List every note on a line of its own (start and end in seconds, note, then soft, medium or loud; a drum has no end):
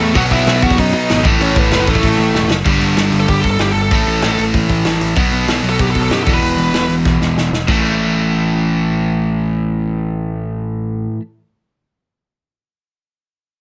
0.00 0.14 E2 medium
0.00 0.13 A2 loud
0.00 0.14 E3 loud
0.00 0.13 A3 medium
0.00 0.15 A3 loud
0.00 0.13 A4 medium
0.14 0.30 B1 loud
0.14 1.23 B2 loud
0.14 1.24 F#3 loud
0.14 1.25 B3 loud
0.14 0.22 F#4 medium
0.14 0.22 F#5 loud
0.14 kick loud
0.14 open hi-hat medium
0.31 0.45 B1 loud
0.31 0.61 E4 medium
0.31 0.63 E5 loud
0.31 kick medium
0.46 0.61 B1 loud
0.46 snare loud
0.46 open hi-hat medium
0.62 0.77 E2 loud
0.62 0.77 F#4 medium
0.62 0.79 F#5 medium
0.62 kick medium
0.70 kick medium
0.78 0.93 F#2 loud
0.78 0.92 D#4 medium
0.78 0.93 D#5 medium
0.78 kick loud
0.78 open hi-hat medium
0.93 1.08 B2 loud
0.93 1.23 D#4 medium
0.93 1.23 D#5 loud
1.09 1.24 G#1 medium
1.09 snare loud
1.09 open hi-hat medium
1.23 1.39 A1 medium
1.23 2.48 A2 loud
1.23 2.49 E3 loud
1.23 2.50 A3 loud
1.23 kick loud
1.40 1.54 A1 loud
1.40 1.55 C#4 medium
1.40 1.58 C#5 medium
1.40 open hi-hat medium
1.56 1.70 A1 loud
1.56 1.71 B3 medium
1.56 1.73 B4 medium
1.56 kick medium
1.71 1.86 F#1 medium
1.71 1.87 B3 medium
1.71 1.89 B4 medium
1.71 snare loud
1.71 open hi-hat medium
1.87 2.02 A1 medium
1.87 2.46 A3 medium
1.87 2.47 A4 medium
1.87 kick medium
1.95 kick medium
2.03 2.17 A1 medium
2.03 kick loud
2.03 open hi-hat medium
2.18 2.33 A1 loud
2.34 2.48 E1 medium
2.34 snare medium
2.50 2.64 F#1 medium
2.50 snare loud
2.65 2.80 G1 medium
2.65 3.90 G2 loud
2.65 3.91 D3 medium
2.65 3.91 G3 loud
2.65 kick loud
2.65 crash loud
2.81 2.95 G1 loud
2.81 open hi-hat medium
2.96 3.11 G1 medium
2.96 snare loud
2.96 open hi-hat medium
3.12 3.27 G1 medium
3.12 open hi-hat medium
3.20 3.29 A4 loud
3.28 3.43 G1 medium
3.28 3.41 G4 medium
3.28 kick loud
3.28 open hi-hat medium
3.41 3.58 G1 medium
3.41 3.50 A4 medium
3.41 kick medium
3.41 open hi-hat medium
3.51 3.60 A4 loud
3.58 3.74 G1 medium
3.58 3.72 G4 medium
3.58 snare loud
3.58 open hi-hat medium
3.72 3.90 G1 medium
3.72 3.81 A4 medium
3.72 open hi-hat medium
3.82 4.42 A4 medium
3.91 4.06 A1 medium
3.91 5.15 A2 loud
3.91 5.17 E3 loud
3.91 5.17 A3 loud
3.91 kick loud
3.91 open hi-hat medium
4.06 4.22 A1 medium
4.06 open hi-hat soft
4.22 4.37 A1 medium
4.22 snare loud
4.22 open hi-hat medium
4.38 4.53 A1 medium
4.38 open hi-hat medium
4.54 4.69 A1 medium
4.54 kick loud
4.54 open hi-hat medium
4.69 4.84 A1 medium
4.69 kick medium
4.69 open hi-hat medium
4.85 5.00 A1 medium
4.85 snare loud
4.85 open hi-hat medium
5.01 5.16 A1 medium
5.01 open hi-hat medium
5.16 5.32 B1 medium
5.16 6.25 B2 loud
5.16 6.26 F#3 loud
5.16 6.27 B3 medium
5.16 kick loud
5.16 open hi-hat medium
5.32 5.47 B1 loud
5.32 open hi-hat medium
5.48 5.62 B1 medium
5.48 snare loud
5.48 open hi-hat medium
5.63 5.78 B1 medium
5.63 open hi-hat medium
5.70 5.81 A4 loud
5.79 5.94 B1 medium
5.79 5.90 G4 loud
5.79 kick loud
5.79 open hi-hat medium
5.91 6.01 A4 medium
5.95 6.10 B1 medium
5.95 kick medium
5.95 open hi-hat medium
6.02 6.13 A4 loud
6.10 6.25 F#2 medium
6.10 6.22 G4 loud
6.10 snare loud
6.10 open hi-hat medium
6.24 6.41 E1 medium
6.24 7.51 E2 loud
6.24 6.33 A4 medium
6.24 kick loud
6.24 open hi-hat medium
6.28 7.52 B2 loud
6.28 7.53 E3 medium
6.33 6.94 B4 medium
6.41 6.57 E1 medium
6.41 open hi-hat medium
6.57 6.72 E1 loud
6.57 open hi-hat soft
6.73 6.88 E1 medium
6.73 snare loud
6.73 open hi-hat medium
6.89 7.04 E1 medium
6.89 open hi-hat medium
7.05 7.20 E1 medium
7.05 kick loud
7.05 snare medium
7.20 7.36 E1 medium
7.20 snare medium
7.37 7.51 E1 medium
7.37 snare medium
7.52 7.67 E1 medium
7.52 snare medium
7.68 11.06 A1 medium
7.68 11.18 A2 medium
7.68 11.20 E3 loud
7.68 11.21 A3 medium
7.68 kick loud
7.68 crash medium